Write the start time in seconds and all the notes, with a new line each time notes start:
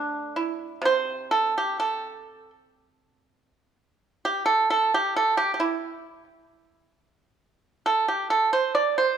Already playing: D3 A3 D4 D5
0.36 E4
0.82 C3 C5
1.31 A4
1.58 G4
1.80 A4
4.25 G4
4.46 A4
4.70 A4
4.94 G4
5.16 A4
5.37 G4
5.54 G4
5.60 E4
7.86 A4
8.08 G4
8.30 A4
8.53 C5
8.75 D5
8.98 C5